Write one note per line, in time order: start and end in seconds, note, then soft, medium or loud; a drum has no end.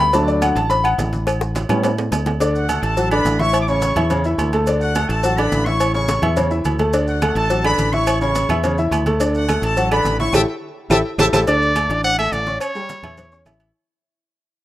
0.00 0.51 D2 medium
0.00 0.10 C#4 medium
0.00 0.13 B5 loud
0.00 high conga medium
0.00 low agogo medium
0.13 0.54 F#3 medium
0.13 0.54 A3 medium
0.13 0.54 D4 medium
0.13 0.27 A5 loud
0.13 cowbell loud
0.13 low agogo medium
0.13 maracas medium
0.28 0.42 D5 medium
0.28 high conga soft
0.28 maracas soft
0.42 0.56 F#5 medium
0.42 cowbell medium
0.42 high conga loud
0.42 low agogo loud
0.42 claves medium
0.42 maracas medium
0.55 0.95 A1 loud
0.55 0.70 A5 loud
0.55 cowbell medium
0.55 low agogo medium
0.55 maracas soft
0.70 0.84 B5 loud
0.70 cowbell loud
0.70 high conga soft
0.70 maracas medium
0.84 0.93 F#5 loud
0.84 high conga soft
0.84 low agogo loud
0.84 claves medium
0.84 maracas soft
0.98 1.64 A1 medium
0.98 cowbell medium
0.98 high conga medium
0.98 low timbale medium
0.98 low agogo medium
0.98 maracas medium
1.13 cowbell medium
1.13 high conga medium
1.13 maracas soft
1.27 cowbell loud
1.27 high bongo medium
1.27 low agogo loud
1.27 claves medium
1.27 maracas medium
1.41 high bongo medium
1.41 high conga soft
1.41 maracas soft
1.55 cowbell medium
1.55 high conga loud
1.55 high timbale medium
1.55 low agogo medium
1.55 maracas medium
1.69 2.09 A2 medium
1.69 1.88 G3 medium
1.69 1.88 B3 soft
1.69 1.89 C#4 medium
1.69 cowbell medium
1.69 low bongo medium
1.69 low conga medium
1.69 low agogo loud
1.69 claves medium
1.69 maracas soft
1.83 cowbell loud
1.83 low bongo medium
1.83 low timbale medium
1.83 low agogo medium
1.83 maracas medium
1.98 high conga soft
1.98 low timbale medium
1.98 maracas soft
2.12 2.77 D2 medium
2.12 cowbell medium
2.12 low bongo medium
2.12 high conga medium
2.12 low timbale medium
2.12 low agogo loud
2.12 claves medium
2.12 maracas medium
2.26 cowbell medium
2.26 low bongo medium
2.26 high conga medium
2.26 low timbale medium
2.26 low agogo medium
2.26 maracas soft
2.40 2.64 D3 medium
2.40 2.64 D4 medium
2.40 2.64 D5 medium
2.40 cowbell loud
2.40 high conga soft
2.40 low agogo medium
2.40 maracas medium
2.55 2.81 F#4 medium
2.55 2.81 F#5 medium
2.55 high conga soft
2.55 maracas soft
2.69 2.92 A3 medium
2.69 2.92 A4 medium
2.69 2.92 A5 medium
2.69 cowbell medium
2.69 high conga loud
2.69 low agogo loud
2.69 maracas medium
2.82 3.22 A1 loud
2.82 3.12 A4 medium
2.82 3.11 A5 medium
2.82 cowbell medium
2.82 high conga soft
2.82 low agogo medium
2.82 maracas soft
2.97 3.09 F#3 medium
2.97 3.09 F#4 medium
2.97 3.09 F#5 medium
2.97 cowbell loud
2.97 high conga soft
2.97 maracas medium
3.11 3.35 D3 medium
3.11 3.35 D4 medium
3.11 3.38 B4 medium
3.11 3.35 D5 medium
3.11 3.37 B5 loud
3.11 high conga soft
3.11 low agogo loud
3.11 maracas soft
3.25 3.91 A1 medium
3.25 cowbell medium
3.25 high conga medium
3.25 low agogo medium
3.25 maracas medium
3.39 3.63 E3 medium
3.39 3.63 E4 medium
3.39 3.61 C#5 medium
3.39 3.63 E5 medium
3.39 3.61 C#6 loud
3.39 cowbell medium
3.39 high conga medium
3.39 maracas soft
3.53 cowbell loud
3.53 high conga soft
3.53 low agogo loud
3.53 maracas medium
3.61 3.68 D6 medium
3.68 3.91 C#3 medium
3.68 3.91 C#4 medium
3.68 3.92 C#5 medium
3.68 4.11 C#5 medium
3.68 4.11 C#6 loud
3.68 high conga soft
3.68 maracas soft
3.82 cowbell medium
3.82 high conga loud
3.82 low agogo medium
3.82 maracas medium
3.96 4.35 E2 loud
3.96 4.08 E3 medium
3.96 4.08 E4 medium
3.96 4.08 E5 medium
3.96 cowbell medium
3.96 low conga medium
3.96 low agogo loud
3.96 maracas soft
4.10 4.22 C#3 medium
4.10 4.22 C#4 medium
4.10 4.22 C#5 medium
4.10 cowbell loud
4.10 high conga soft
4.10 low conga medium
4.10 low agogo medium
4.10 maracas medium
4.24 4.48 E3 medium
4.24 4.48 E4 medium
4.24 4.48 E5 medium
4.24 high conga soft
4.24 maracas soft
4.38 5.04 D2 medium
4.38 cowbell medium
4.38 high conga medium
4.38 low agogo loud
4.38 maracas medium
4.53 4.65 A3 medium
4.53 4.65 A4 medium
4.53 4.65 A5 medium
4.53 cowbell medium
4.53 low agogo medium
4.53 maracas soft
4.67 4.91 D3 medium
4.67 4.91 D4 medium
4.67 4.91 D5 medium
4.67 cowbell loud
4.67 high conga soft
4.67 low agogo medium
4.67 maracas medium
4.81 5.08 F#4 medium
4.81 5.08 F#5 medium
4.81 high conga soft
4.81 maracas soft
4.95 5.19 A3 medium
4.95 5.19 A4 medium
4.95 5.19 A5 medium
4.95 cowbell medium
4.95 high conga loud
4.95 low agogo loud
4.95 maracas medium
5.09 5.49 A1 loud
5.09 5.38 A4 medium
5.09 5.38 A5 medium
5.09 cowbell medium
5.09 high conga soft
5.09 low agogo medium
5.09 maracas soft
5.23 5.36 F#3 medium
5.23 5.36 F#4 medium
5.23 5.36 F#5 medium
5.23 cowbell loud
5.23 high conga soft
5.23 maracas medium
5.37 5.61 D3 medium
5.37 5.62 D4 medium
5.37 5.67 B4 medium
5.37 5.62 D5 loud
5.37 5.66 B5 loud
5.37 high conga soft
5.37 low agogo loud
5.37 maracas soft
5.52 6.17 A1 medium
5.52 cowbell medium
5.52 high conga medium
5.52 low agogo medium
5.52 maracas medium
5.65 5.90 E3 medium
5.65 5.90 E4 medium
5.65 5.95 C#5 medium
5.65 5.90 E5 medium
5.65 5.94 C#6 loud
5.65 cowbell medium
5.65 high conga medium
5.65 maracas soft
5.80 cowbell loud
5.80 high conga soft
5.80 low agogo loud
5.80 maracas medium
5.94 6.18 C#3 medium
5.94 6.18 C#4 medium
5.94 6.18 C#5 medium
5.94 6.35 C#5 medium
5.94 6.34 C#6 medium
5.94 high conga soft
5.94 maracas soft
6.08 cowbell medium
6.08 high bongo medium
6.08 high conga loud
6.08 low agogo medium
6.08 maracas medium
6.22 6.62 E2 loud
6.22 6.34 E3 medium
6.22 6.34 E4 medium
6.22 6.34 E5 medium
6.22 cowbell medium
6.22 low conga medium
6.22 low agogo loud
6.22 maracas soft
6.36 6.48 C#3 medium
6.36 6.48 C#4 medium
6.36 6.49 C#5 medium
6.36 cowbell loud
6.36 high conga soft
6.36 low conga medium
6.36 low agogo medium
6.36 maracas medium
6.50 6.74 E3 medium
6.50 6.74 E4 medium
6.50 6.74 E5 medium
6.50 maracas soft
6.65 7.31 D2 medium
6.65 cowbell medium
6.65 high conga medium
6.65 low agogo loud
6.65 maracas medium
6.79 6.91 A3 medium
6.79 6.91 A4 medium
6.79 6.91 A5 medium
6.79 cowbell medium
6.79 low bongo medium
6.79 high conga medium
6.79 low agogo medium
6.79 maracas soft
6.93 7.17 D3 medium
6.93 7.17 D4 medium
6.93 7.17 D5 medium
6.93 cowbell loud
6.93 high conga soft
6.93 low agogo medium
6.93 maracas medium
7.07 7.35 F#4 medium
7.07 7.35 F#5 medium
7.07 high conga soft
7.07 maracas soft
7.22 7.45 A3 medium
7.22 7.45 A4 medium
7.22 7.46 A5 medium
7.22 cowbell medium
7.22 high conga loud
7.22 low agogo loud
7.22 claves medium
7.22 maracas medium
7.35 7.75 A1 loud
7.35 7.63 A4 medium
7.35 7.63 A5 loud
7.35 cowbell medium
7.35 high conga soft
7.35 low agogo medium
7.35 maracas soft
7.50 7.62 F#3 medium
7.50 7.62 F#4 medium
7.50 7.62 F#5 medium
7.50 cowbell loud
7.50 high conga soft
7.50 maracas medium
7.64 7.88 D3 medium
7.64 7.88 D4 loud
7.64 7.91 B4 medium
7.64 7.88 D5 loud
7.64 7.91 B5 loud
7.64 high conga soft
7.64 low agogo loud
7.64 claves medium
7.64 maracas soft
7.78 8.44 A1 medium
7.78 cowbell medium
7.78 high conga medium
7.78 low agogo medium
7.78 maracas medium
7.93 8.16 E3 medium
7.93 8.16 E4 medium
7.93 8.21 C#5 medium
7.93 8.17 E5 medium
7.93 8.20 C#6 loud
7.93 cowbell medium
7.93 high conga medium
7.93 maracas soft
8.07 cowbell loud
8.07 high conga soft
8.07 low agogo loud
8.07 claves medium
8.07 maracas medium
8.21 8.45 C#3 medium
8.21 8.45 C#4 medium
8.21 8.45 C#5 medium
8.21 8.61 C#5 medium
8.21 8.61 C#6 medium
8.21 high conga soft
8.21 maracas soft
8.35 cowbell medium
8.35 high conga loud
8.35 low agogo medium
8.35 maracas medium
8.49 8.89 E2 loud
8.49 8.61 E3 medium
8.49 8.62 E4 medium
8.49 8.62 E5 medium
8.49 cowbell medium
8.49 low conga medium
8.49 low agogo loud
8.49 claves medium
8.49 maracas soft
8.64 8.76 C#3 medium
8.64 8.76 C#4 medium
8.64 8.76 C#5 medium
8.64 cowbell loud
8.64 high conga soft
8.64 low conga medium
8.64 low agogo medium
8.64 maracas medium
8.78 9.01 E3 medium
8.78 9.01 E4 medium
8.78 9.02 E5 medium
8.78 maracas soft
8.91 9.57 D2 medium
8.91 cowbell medium
8.91 high conga medium
8.91 low agogo loud
8.91 claves medium
8.91 maracas medium
9.06 9.18 A3 medium
9.06 9.18 A4 medium
9.06 9.18 A5 medium
9.06 cowbell medium
9.06 high conga medium
9.06 low agogo medium
9.06 maracas soft
9.20 9.44 D3 medium
9.20 9.44 D4 medium
9.20 9.44 D5 medium
9.20 cowbell loud
9.20 high conga soft
9.20 low agogo medium
9.20 maracas medium
9.34 9.61 F#4 medium
9.34 9.62 F#5 medium
9.34 high conga soft
9.34 maracas soft
9.48 9.72 A3 medium
9.48 9.72 A4 medium
9.48 9.72 A5 medium
9.48 cowbell medium
9.48 high conga loud
9.48 low agogo loud
9.48 claves medium
9.48 maracas medium
9.62 10.02 A1 loud
9.62 9.90 A4 medium
9.62 9.90 A5 medium
9.62 cowbell medium
9.62 high conga soft
9.62 low agogo medium
9.62 maracas soft
9.77 9.89 F#3 medium
9.77 9.89 F#4 medium
9.77 9.89 F#5 medium
9.77 cowbell loud
9.77 high conga soft
9.77 maracas medium
9.91 10.15 D3 loud
9.91 10.15 D4 medium
9.91 10.18 B4 medium
9.91 10.15 D5 loud
9.91 10.18 B5 loud
9.91 high conga soft
9.91 low agogo loud
9.91 claves medium
9.91 maracas soft
10.04 10.31 A1 medium
10.04 cowbell medium
10.04 high conga medium
10.04 low agogo medium
10.04 maracas medium
10.20 10.31 E3 medium
10.20 10.31 E4 medium
10.20 10.34 C#5 medium
10.20 10.32 E5 medium
10.20 10.33 C#6 loud
10.20 cowbell medium
10.20 high conga medium
10.20 maracas soft
10.33 10.44 A1 loud
10.33 10.43 E4 medium
10.33 10.43 G4 loud
10.33 10.43 A4 loud
10.33 10.41 E5 medium
10.33 10.41 G5 loud
10.33 10.41 A5 loud
10.33 cowbell loud
10.33 high conga loud
10.33 high timbale loud
10.33 claves loud
10.33 maracas medium
10.90 11.01 A1 loud
10.90 11.00 E4 loud
10.90 11.00 G4 loud
10.90 11.00 A4 loud
10.90 10.98 E5 loud
10.90 10.98 G5 loud
10.90 10.98 A5 loud
10.90 cowbell loud
10.90 high conga loud
10.90 high timbale loud
10.90 claves loud
10.90 maracas loud
11.18 11.29 A1 loud
11.18 11.28 E4 loud
11.18 11.28 G4 loud
11.18 11.28 A4 loud
11.18 11.26 E5 loud
11.18 11.26 G5 loud
11.18 11.26 A5 loud
11.18 cowbell loud
11.18 high conga loud
11.18 high timbale loud
11.18 claves medium
11.18 maracas loud
11.33 11.43 A1 loud
11.33 11.43 E4 loud
11.33 11.43 G4 medium
11.33 11.43 A4 loud
11.33 11.40 E5 medium
11.33 11.40 G5 loud
11.33 11.40 A5 medium
11.33 cowbell loud
11.33 high conga medium
11.33 high timbale medium
11.33 claves medium
11.33 maracas loud
11.47 11.87 D2 medium
11.47 11.71 D3 medium
11.47 11.71 D4 medium
11.47 12.00 D5 loud
11.47 11.71 D5 medium
11.47 cowbell loud
11.47 high conga soft
11.47 low agogo medium
11.47 maracas medium
11.62 high conga soft
11.62 maracas soft
11.76 11.88 A3 medium
11.76 11.88 A4 medium
11.76 11.88 A5 medium
11.76 cowbell medium
11.76 high conga loud
11.76 low agogo loud
11.76 claves medium
11.76 maracas medium
11.89 12.29 A1 loud
11.89 12.14 D4 medium
11.89 12.14 D5 medium
11.89 12.14 D6 medium
11.89 cowbell medium
11.89 high conga soft
11.89 low agogo medium
11.89 maracas soft
12.04 12.17 F#5 loud
12.04 cowbell loud
12.04 high conga soft
12.04 maracas medium
12.18 12.42 A3 medium
12.18 12.42 A4 medium
12.18 12.34 E5 loud
12.18 12.42 A5 medium
12.18 high conga soft
12.18 low agogo loud
12.18 claves medium
12.18 maracas soft
12.32 12.57 A1 medium
12.32 12.60 D5 loud
12.32 cowbell medium
12.32 high conga medium
12.32 low agogo medium
12.32 maracas medium
12.47 12.70 C#4 medium
12.47 12.70 C#5 medium
12.47 12.70 C#6 medium
12.47 cowbell medium
12.47 high conga medium
12.47 maracas soft
12.60 13.42 C#5 medium
12.60 cowbell loud
12.60 high conga soft
12.60 low agogo loud
12.60 claves medium
12.60 maracas medium
12.75 12.98 G3 medium
12.75 12.99 G4 medium
12.75 12.99 G5 medium
12.75 high conga soft
12.75 maracas soft
12.89 cowbell medium
12.89 high conga loud
12.89 low agogo medium
12.89 maracas medium
13.03 13.43 E2 loud
13.03 13.27 E3 medium
13.03 13.27 E4 medium
13.03 13.27 E5 medium
13.03 cowbell medium
13.03 low conga medium
13.03 low agogo loud
13.03 claves medium
13.03 maracas soft
13.17 cowbell loud
13.17 high conga soft
13.17 low conga medium
13.17 low agogo medium
13.17 maracas medium
13.32 13.43 C#4 medium
13.32 13.44 C#5 medium
13.32 13.44 C#6 medium
13.32 high conga soft
13.32 maracas soft
13.45 13.71 A1 medium
13.45 13.69 E3 medium
13.45 13.69 E4 medium
13.45 13.69 E5 medium
13.45 cowbell medium
13.45 high conga medium
13.45 low timbale medium
13.45 low agogo loud
13.45 claves medium
13.45 maracas medium
13.60 cowbell medium
13.60 low agogo medium
13.60 maracas soft